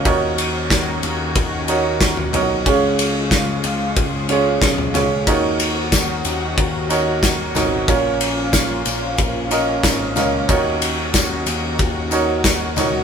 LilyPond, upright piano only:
<<
  \new Staff \with { instrumentName = "Upright piano" } { \time 4/4 \key ees \minor \tempo 4 = 92 <ees' ges' bes' des''>2 r8 <ees' ges' bes' des''>4 <ees' ges' bes' des''>8 | <des' f' aes' des''>2 r8 <des' f' aes' des''>4 <des' f' aes' des''>8 | <ees' ges' bes' des''>2 r8 <ees' ges' bes' des''>4 <ees' ges' bes' des''>8 | <des' f' bes' des''>2 r8 <des' f' bes' ees''>4 <des' f' bes' ees''>8 |
<ees' ges' bes' des''>2 r8 <ees' ges' bes' des''>4 <ees' ges' bes' des''>8 | }
  \new Staff \with { instrumentName = "Upright piano" } { \clef bass \time 4/4 \key ees \minor ees4. r2 r8 | des4. r2 r8 | ees4. r2 r8 | bes,4. r2 r8 |
ees4. r2 r8 | }
>>